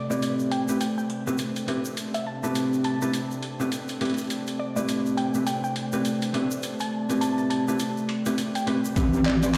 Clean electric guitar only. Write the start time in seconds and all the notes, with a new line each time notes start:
0.10 A2 C4 E4 G4 B4
0.68 A2 C4 E4 G4 B4
1.27 A2 C4 E4 G4 B4
1.68 A2 C4 E4 G4 B4
2.43 A2 C4 E4 G4 B4
3.01 A2 C4 E4 G4 B4
3.60 A2 C4 E4 G4 B4
4.01 A2 C4 E4 G4 B4
4.76 A2 C4 E4 G4 B4
5.34 A2 C4 E4 G4 B4
5.93 A2 C4 E4 G4 B4
6.34 A2 C4 E4 G4 B4
7.09 A2 C4 E4 G4 B4
7.68 A2 C4 E4 G4 B4
8.26 A2 C4 E4 G4 B4
8.67 A2 C4 E4 G4 B4
8.96 C4 E4 G4 B4
9.42 C4 E4 G4 B4